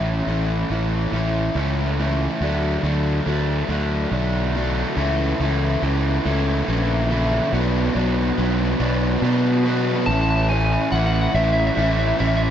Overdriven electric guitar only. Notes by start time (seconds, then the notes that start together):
Already playing: A2 E3 A3 C#4 E4
0.28 A2 E3 A3 C#4 E4
0.71 A2 E3 A3 C#4 E4
1.13 A2 E3 A3 C#4 E4
1.55 A2 E3 A3 C#4 E4
1.98 A2 E3 A3 C#4 E4
2.41 D3 F#3 A3 D4
2.84 D3 F#3 A3 D4
3.26 D3 F#3 A3 D4
3.69 D3 F#3 A3 D4
4.11 D3 F#3 A3 D4
4.55 D3 F#3 A3 D4
4.96 C#3 E3 A3 E4
5.40 C#3 E3 A3 E4
5.82 C#3 E3 A3 E4
6.25 C#3 E3 A3 E4
6.68 C#3 E3 A3 E4
7.10 C#3 E3 A3 E4
7.52 B2 F#3 B3 D4
7.94 B2 F#3 B3 D4
8.37 B2 F#3 B3 D4
8.80 B2 F#3 B3 D4
9.22 B2 F#3 B3 D4
9.65 B2 F#3 B3 D4
10.08 A2 E3 A3 C#4 E4
10.49 A3 C#4 E4
10.92 E3 A3 C#4 E4
11.34 A3 C#4 E4
11.76 E3 A3 C#4 E4
12.18 A3 C#4 E4